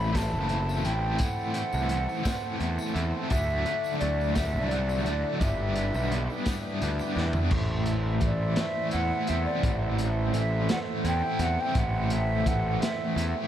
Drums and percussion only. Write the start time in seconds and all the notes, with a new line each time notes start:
0.15 kick, snare, closed hi-hat, tambourine
0.34 tambourine
0.49 closed hi-hat
0.69 tambourine
0.85 closed hi-hat
1.18 kick, closed hi-hat, tambourine
1.39 tambourine
1.54 closed hi-hat
1.72 tambourine
1.89 closed hi-hat
2.09 tambourine
2.25 kick, snare, closed hi-hat, tambourine
2.44 tambourine
2.60 closed hi-hat
2.79 tambourine
2.96 closed hi-hat
3.30 kick, closed hi-hat, tambourine
3.50 tambourine
3.66 closed hi-hat
3.84 tambourine
4.01 closed hi-hat
4.21 tambourine
4.35 kick, snare, closed hi-hat, tambourine
4.54 tambourine
4.71 closed hi-hat
4.89 tambourine
5.06 closed hi-hat
5.41 kick, closed hi-hat, tambourine
5.76 closed hi-hat, tambourine
5.94 tambourine
6.12 closed hi-hat
6.30 tambourine
6.46 kick, snare, closed hi-hat, tambourine
6.82 closed hi-hat
6.99 tambourine
7.16 snare, tambourine
7.33 floor tom, tambourine
7.51 kick, crash
7.86 closed hi-hat
8.21 kick, closed hi-hat
8.56 snare, closed hi-hat
8.91 closed hi-hat
9.27 closed hi-hat
9.63 kick, closed hi-hat
9.98 closed hi-hat
10.34 closed hi-hat
10.69 snare, closed hi-hat
11.05 closed hi-hat
11.39 closed hi-hat
11.75 kick, closed hi-hat
12.10 closed hi-hat
12.46 kick, closed hi-hat
12.82 snare, closed hi-hat
13.18 closed hi-hat